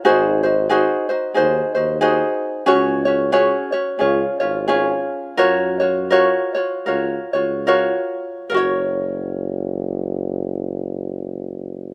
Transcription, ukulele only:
X:1
M:4/4
L:1/8
Q:"Swing" 1/4=84
K:F#
V:1 name="Ukulele"
[DFG^B] [DFB] [DFGB] [DFB] [DFGB] [DFB] [DFGB]2 | [CFGc] [CFc] [CFGc] [CFc] [CEGc] [CEc] [CEGc]2 | [EFAc] [EFc] [EFAc] [EFc] [EFAc] [EFc] [EFAc]2 | [EFAc]8 |]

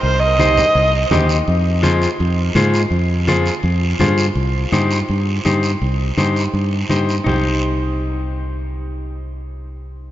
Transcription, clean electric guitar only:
X:1
M:4/4
L:1/8
Q:1/4=166
K:Cm
V:1 name="Clean electric guitar"
z2 [EGc] z3 [EGc] z | z2 [FAc] z3 [FAc] z | z2 [FAc] z3 [FAc] z | z2 [EGc] z3 [EGc] z |
z2 [EGc] z3 [EGc] z | [EGc]8- | [EGc]8 |]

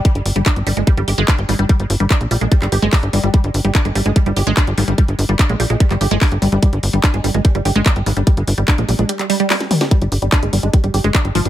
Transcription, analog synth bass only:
X:1
M:4/4
L:1/16
Q:1/4=146
K:Gphr
V:1 name="Analog synth bass" clef=bass
z G,,, G,,, G,,, z G,,, G,,, G,,, z G,,, G,,, G,,, z G,,, A,,, G,,, | z G,,, G,,, G,,, z B,,, B,,, B,,, z G,,, G,,, G,,, z G,,, G,,, G,,, | z G,,, G,,, G,,, z G,,, G,,, G,,, z G,,, G,,, G,,, z G,,, A,,, G,,, | z G,,, G,,, G,,, z B,,, B,,, B,,, z G,,, G,,, G,,, z G,,, G,,, G,,, |
z G,,, G,,, G,,, z G,,, G,,, G,,, z G,,, G,,, G,,, z G,,, A,,, G,,, | z G,,, G,,, G,,, z B,,, B,,, B,,, z8 | z G,,, G,,, G,,, z G,,, G,,, G,,, z G,,, G,,, G,,, z G,,, A,,, G,,, |]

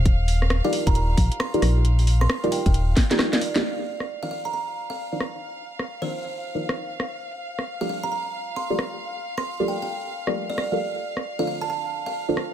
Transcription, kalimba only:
X:1
M:4/4
L:1/16
Q:"Swing 16ths" 1/4=134
K:Cdor
V:1 name="Kalimba"
z4 z f f b b z3 c'2 z2 | z3 c'2 z g g z4 z d d z | z4 z f f b b z2 f2 z3 | z4 z c6 z4 z |
z4 z f f b b z3 c'2 z2 | z3 c'2 z g g z4 z d d z | z4 z f f a a z2 f2 z3 |]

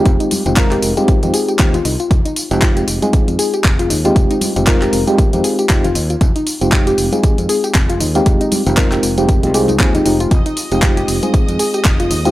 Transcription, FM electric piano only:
X:1
M:4/4
L:1/16
Q:"Swing 16ths" 1/4=117
K:Fm
V:1 name="FM electric piano"
[A,CEFG]3 [A,CEFG] [A,CEFB]3 [A,CEFG]2 [A,CEFG]3 [A,CEFG] z3 | z3 [A,CEFG] [A,CFG]3 [A,CEFA]8 [A,CEFG]- | [A,CEFG]3 [A,CEFG] [A,CEFB]3 [A,CEFG]2 [A,CEFG]3 [A,CEFG] z3 | z3 [A,CEFG] F3 [A,CEFA]8 [A,CEFG]- |
[A,CEFG]3 [A,CEFG] [A,CEFB]3 [A,CEFG]2 [A,CEFG] [A,CEFA]2 [A,CEFA] [A,CEFG] [A,CEFG]2 | z3 [A,CEFG] [A,CEFG]3 [A,CEFA]8 [A,CEFG] |]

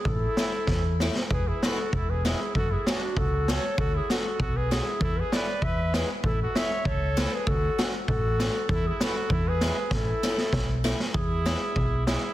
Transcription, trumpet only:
X:1
M:2/4
L:1/16
Q:1/4=98
K:A
V:1 name="Trumpet"
E6 z2 | G E F2 E G E2 | F E D2 F2 A2 | F E F2 F G E2 |
E G B2 B2 G2 | E F c2 A3 G | F3 z F4 | E E F2 E G3 |
E6 z2 | [K:E] E6 E2 |]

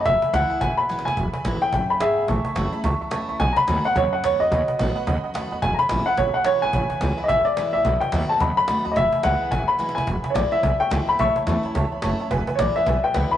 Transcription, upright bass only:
X:1
M:4/4
L:1/8
Q:"Swing" 1/4=215
K:E
V:1 name="Upright bass" clef=bass
E,,, z C,, z G,,, z G,,, A,,, | E,,, z G,,, z G,,, z G,,, G,,, | A,,, z F,,, z C,, z C,, C,, | B,,, z D,, z D,, z D,, D,, |
D,, z A,,, z D,, z D,, E,, | E,,, z G,,, z G,,, z G,,, G,,, | G,,, z C,, z G,,, z G,,, A,,, | B,,, z D,, z D,, z D,, D,, |
E,,, z C,, z G,,, z G,,, A,,, | E,,, z A,,, z B,,, z C,, z | A,,, z E,, z C,, z F,,, z | E,,, z A,,, z B,,, z C,, z |]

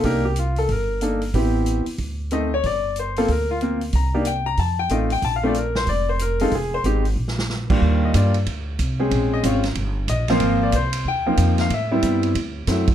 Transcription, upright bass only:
X:1
M:4/4
L:1/8
Q:"Swing" 1/4=185
K:Bb
V:1 name="Upright bass" clef=bass
C,,4 G,,,4 | A,,,3 z D,,4 | G,,,4 D,,4 | C,,4 F,,2 A,,,2 |
B,,,4 F,,,4 | F,,,2 _A,,,2 B,,,4 | [K:Eb] E,,2 G,,2 D,,2 C,,2 | B,,,2 A,,,2 G,,,2 B,,,2 |
A,,,2 C,,2 E,,2 F,,2 | =A,,2 G,,2 D,,2 ^F,,2 |]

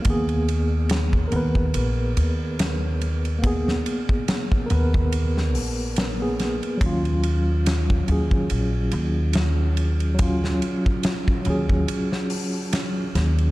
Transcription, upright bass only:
X:1
M:4/4
L:1/8
Q:"Swing 16ths" 1/4=71
K:Ebm
V:1 name="Upright bass" clef=bass
E,,3 E,, B,,, E,,3- | E,, z2 E,,2 B,,,2 z | E,,3 E,, B,,, E,,3- | E,, z2 E,, z3 E,, |]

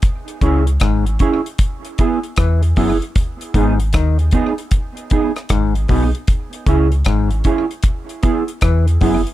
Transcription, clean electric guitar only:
X:1
M:4/4
L:1/8
Q:"Swing 16ths" 1/4=77
K:G#m
V:1 name="Clean electric guitar"
z [CEG] z [CEG] z [B,EG] z [B,EG] | z [B,DG] z [B,DG] z [B,DG] z [B,DG] | z [CEG] z [CEG] z [B,EG] z [B,EG] |]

